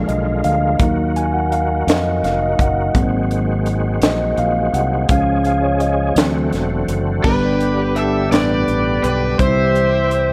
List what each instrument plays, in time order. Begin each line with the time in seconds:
Already playing: tonewheel organ D3 G#3 A#3 F4, tine electric piano F3 G#3 D4
0.08 fingered electric bass B1, tine electric piano D#5, closed hi-hat
0.44 fingered electric bass D2, tine electric piano F5, closed hi-hat
0.78 fingered electric bass D#2, tonewheel organ D#3 F#4, tine electric piano F#3 A#3, kick, closed hi-hat
0.83 tine electric piano D#4
1.16 tine electric piano G#5, closed hi-hat
1.34 tine electric piano F#5
1.52 tine electric piano F5, closed hi-hat
1.87 fingered electric bass F2, tine electric piano D#5, snare, closed hi-hat
2.23 fingered electric bass F1, tine electric piano F5, snare, closed hi-hat
2.43 tine electric piano D#5
2.59 fingered electric bass F#1, tine electric piano F#5, kick, closed hi-hat
2.94 fingered electric bass G#1, tine electric piano F#3 A#3 C4, tonewheel organ G#3 C4, kick, closed hi-hat
3.31 closed hi-hat
3.66 closed hi-hat
4.01 fingered electric bass A#1, tine electric piano D#5, snare, closed hi-hat
4.37 fingered electric bass A#1, tine electric piano F5, closed hi-hat
4.73 fingered electric bass C2, tine electric piano F#5, closed hi-hat
5.09 fingered electric bass C#2, tonewheel organ F3 C#4 G#4, tine electric piano F3 G#3 C#4 F5, kick, closed hi-hat
5.44 tine electric piano F5, closed hi-hat
5.63 tine electric piano C#5
5.80 tine electric piano D#5, closed hi-hat
6.16 fingered electric bass D2, tonewheel organ D3 C4 F#4, tine electric piano E3 F#3 C4, snare, closed hi-hat
6.20 tonewheel organ A3
6.52 fingered electric bass E1, snare, closed hi-hat
6.88 fingered electric bass F#1, closed hi-hat
7.23 fingered electric bass G1, tine electric piano G2 G3 B3 D4 A#4, tonewheel organ D3 G3 B3 G4, horn section G4 D5, electric slide guitar B4, kick, crash
7.28 horn section B4
7.32 tine electric piano B4
7.60 closed hi-hat
7.81 horn section B4
7.96 horn section A4, electric slide guitar E5, closed hi-hat
8.31 fingered electric bass A1, tine electric piano G3 B3 D4 B4, horn section D4 G4 B4, electric slide guitar D5, snare, closed hi-hat
8.68 fingered electric bass A1, closed hi-hat
9.03 fingered electric bass B1, electric slide guitar B4, horn section D5, closed hi-hat
9.39 fingered electric bass C2, tine electric piano C3 G3 C4 D#4 C5, tonewheel organ E3 C4, horn section G4 C5 E5, electric slide guitar C5, kick, closed hi-hat
9.46 tine electric piano E4
9.75 closed hi-hat
10.11 closed hi-hat